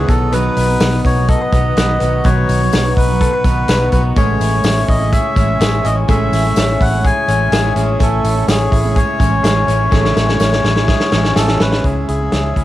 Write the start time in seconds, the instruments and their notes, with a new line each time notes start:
Already playing: clean electric guitar C#3 B3 E4 B4, melodica G#4
0.08 fingered electric bass B1, clean electric guitar B2, steel-string acoustic guitar D#3 F#3 B3 D#4, melodica A4, glass harmonica B4 D#5 F#5 D#6, kick, hi-hat pedal, open hi-hat, tambourine
0.32 clean electric guitar B2 B4, steel-string acoustic guitar B2 D#3 F#3 B3 D#4, melodica B4, hi-hat pedal, open hi-hat, tambourine
0.56 fingered electric bass B1, clean electric guitar D#4, hi-hat pedal, open hi-hat, tambourine
0.68 steel-string acoustic guitar F#3 B3 D#4
0.80 fingered electric bass B1, clean electric guitar B3, snare, hi-hat pedal, open hi-hat, tambourine
1.04 fingered electric bass B1, clean electric guitar D#4, melodica C#5, kick, hi-hat pedal, open hi-hat, tambourine
1.16 steel-string acoustic guitar F#3 B3 D#4
1.28 clean electric guitar A4, melodica D#5, kick, hi-hat pedal, open hi-hat
1.41 clean electric guitar B4
1.52 fingered electric bass B1, steel-string acoustic guitar D#3 F#3 B3 D#4, clean electric guitar B3, kick, hi-hat pedal, open hi-hat, tambourine
1.76 fingered electric bass B1, steel-string acoustic guitar D#3 F#3 B3 D#4, clean electric guitar B4, snare, hi-hat pedal, open hi-hat, tambourine
2.00 fingered electric bass B1, steel-string acoustic guitar D#3 F#3 B3 D#4, clean electric guitar B3, glass harmonica C#6, hi-hat pedal, open hi-hat, tambourine
2.24 fingered electric bass B1, steel-string acoustic guitar B2 D#3 F#3 B3 D#4, clean electric guitar B2 B4, melodica C#5, kick, hi-hat pedal, open hi-hat, tambourine
2.49 fingered electric bass B1, clean electric guitar D#4, hi-hat pedal, open hi-hat, tambourine
2.60 steel-string acoustic guitar F#3 B3 D#4
2.73 fingered electric bass B1, clean electric guitar B3, snare, hi-hat pedal, open hi-hat, tambourine
2.97 fingered electric bass B1, clean electric guitar D#4, melodica B4, kick, hi-hat pedal, open hi-hat, tambourine
3.08 steel-string acoustic guitar F#3 B3 D#4
3.21 clean electric guitar A4, kick, hi-hat pedal, open hi-hat
3.33 clean electric guitar B4
3.44 fingered electric bass B1, steel-string acoustic guitar D#3 F#3 B3 D#4, clean electric guitar B3, kick, hi-hat pedal, open hi-hat, tambourine
3.68 fingered electric bass B1, steel-string acoustic guitar D#3 F#3 B3 D#4, clean electric guitar B4, snare, hi-hat pedal, open hi-hat, tambourine
3.92 fingered electric bass B1, steel-string acoustic guitar D#3 F#3 B3 D#4, clean electric guitar B3, melodica B4, kick, hi-hat pedal, open hi-hat, tambourine
4.16 fingered electric bass A1, steel-string acoustic guitar A2 E3 G#3 C#4 E4, clean electric guitar A3 G#4, melodica C#5, glass harmonica C#5 E5 G#5, kick, hi-hat pedal, open hi-hat, tambourine
4.40 fingered electric bass A1, clean electric guitar E4, hi-hat pedal, open hi-hat, tambourine
4.52 steel-string acoustic guitar G#3 C#4 E4
4.64 fingered electric bass A1, clean electric guitar C#4, snare, hi-hat pedal, open hi-hat, tambourine
4.88 fingered electric bass A1, clean electric guitar E4, melodica D#5, kick, hi-hat pedal, open hi-hat
4.99 steel-string acoustic guitar G#3 C#4 E4
5.13 clean electric guitar G#4, melodica E5, kick, hi-hat pedal, open hi-hat, tambourine
5.35 fingered electric bass A1, steel-string acoustic guitar E3 G#3 C#4 E4, clean electric guitar C#4, kick, hi-hat pedal, open hi-hat, tambourine
5.60 fingered electric bass A1, steel-string acoustic guitar E3 G#3 C#4 E4, clean electric guitar G#4, snare, hi-hat pedal, open hi-hat, tambourine
5.83 fingered electric bass A1, steel-string acoustic guitar E3 G#3 C#4 E4, clean electric guitar C#4, melodica D#5, hi-hat pedal, open hi-hat, tambourine
6.08 fingered electric bass A1, steel-string acoustic guitar A2 E3 G#3 C#4 E4, clean electric guitar A3 G#4, melodica E5, kick, hi-hat pedal, open hi-hat, tambourine
6.32 fingered electric bass A1, clean electric guitar E4, hi-hat pedal, open hi-hat, tambourine
6.43 steel-string acoustic guitar G#3 C#4 E4
6.56 fingered electric bass A1, clean electric guitar C#4, snare, hi-hat pedal, open hi-hat, tambourine
6.81 fingered electric bass A1, clean electric guitar E4, melodica F#5, kick, hi-hat pedal, open hi-hat, tambourine
6.91 steel-string acoustic guitar G#3 C#4 E4
7.04 clean electric guitar G#4, melodica G#5, kick, hi-hat pedal, open hi-hat
7.27 fingered electric bass A1, steel-string acoustic guitar E3 G#3 C#4 E4, clean electric guitar C#4, hi-hat pedal, open hi-hat, tambourine
7.51 fingered electric bass A1, steel-string acoustic guitar E3 G#3 C#4 E4, clean electric guitar G#4, snare, hi-hat pedal, open hi-hat, tambourine
7.76 fingered electric bass A1, steel-string acoustic guitar E3 G#3 C#4 E4, clean electric guitar C#4, melodica G#4, hi-hat pedal, open hi-hat, tambourine
8.00 fingered electric bass A1, steel-string acoustic guitar A2 E3 C#4 E4, clean electric guitar A3, melodica A4, kick, hi-hat pedal, open hi-hat, tambourine
8.24 fingered electric bass A1, clean electric guitar E4, hi-hat pedal, open hi-hat, tambourine
8.35 steel-string acoustic guitar G#3 C#4 E4
8.48 fingered electric bass A1, clean electric guitar C#4, melodica G#4, snare, hi-hat pedal, open hi-hat, tambourine
8.72 fingered electric bass A1, clean electric guitar E4, kick, hi-hat pedal, open hi-hat, tambourine
8.83 steel-string acoustic guitar G#3 C#4 E4
8.96 clean electric guitar G#4, melodica C#5, kick, hi-hat pedal, open hi-hat, tambourine
9.19 fingered electric bass A1, steel-string acoustic guitar E3 G#3 C#4 E4, clean electric guitar C#4, kick, hi-hat pedal, open hi-hat, tambourine
9.43 fingered electric bass A1, steel-string acoustic guitar E3 G#3 C#4 E4, clean electric guitar G#4, snare, hi-hat pedal, open hi-hat, tambourine
9.67 fingered electric bass A1, steel-string acoustic guitar E3 G#3 C#4 E4, clean electric guitar C#4, hi-hat pedal, open hi-hat, tambourine
9.91 fingered electric bass A1, steel-string acoustic guitar A2 E3 G#3 C#4 E4, clean electric guitar A3 G#4, kick, snare, tambourine
10.05 snare
10.16 fingered electric bass A1, clean electric guitar E4, snare, tambourine
10.27 steel-string acoustic guitar G#3 C#4 E4, snare
10.40 fingered electric bass A1, clean electric guitar C#4, snare, tambourine
10.52 snare
10.64 fingered electric bass A1, clean electric guitar E4, snare, tambourine
10.75 steel-string acoustic guitar G#3 C#4 E4, snare
10.88 clean electric guitar G#4, kick, snare, tambourine
11.00 snare
11.12 fingered electric bass A1, steel-string acoustic guitar E3 G#3 C#4 E4, clean electric guitar C#4, snare, tambourine
11.24 snare
11.35 fingered electric bass A1, steel-string acoustic guitar E3 G#3 C#4 E4, clean electric guitar G#4, melodica A4, snare, tambourine
11.48 snare
11.60 fingered electric bass A1, steel-string acoustic guitar E3 G#3 C#4 E4, clean electric guitar C#4, melodica B4, snare, tambourine
11.72 snare
11.84 fingered electric bass C#2, steel-string acoustic guitar C#3 G#3 C#4 E4, clean electric guitar C#3, melodica G#4, glass harmonica C#5 E5 G#5 E6, kick, closed hi-hat
12.08 fingered electric bass C#2, clean electric guitar E4, melodica G#4, closed hi-hat
12.20 steel-string acoustic guitar G#3 C#4 E4
12.32 fingered electric bass C#2, clean electric guitar C#4, snare, closed hi-hat
12.56 fingered electric bass C#2, steel-string acoustic guitar C#3 G#3 C#4 E4, clean electric guitar E4, kick, closed hi-hat